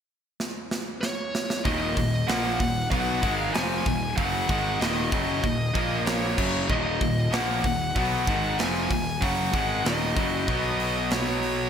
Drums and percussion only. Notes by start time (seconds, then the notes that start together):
0.40 snare
0.71 snare
1.03 snare
1.35 snare
1.50 snare
1.65 kick, open hi-hat
1.97 kick, open hi-hat
2.28 snare, open hi-hat
2.60 kick, open hi-hat
2.92 kick, open hi-hat
3.23 kick, open hi-hat
3.54 snare, open hi-hat
3.86 kick, open hi-hat
4.18 kick, open hi-hat
4.49 kick, open hi-hat
4.81 snare, open hi-hat
5.12 kick, open hi-hat
5.44 kick, open hi-hat
5.75 kick, open hi-hat
6.06 snare, open hi-hat
6.38 kick, crash
6.70 kick
7.01 kick, open hi-hat
7.33 snare, open hi-hat
7.64 kick, open hi-hat
7.96 kick, open hi-hat
8.27 kick, open hi-hat
8.59 snare, open hi-hat
8.91 kick, open hi-hat
9.22 kick, open hi-hat
9.54 kick, open hi-hat
9.85 snare, open hi-hat
10.16 kick, open hi-hat
10.48 kick, open hi-hat
10.80 open hi-hat
11.11 snare, open hi-hat
11.43 open hi-hat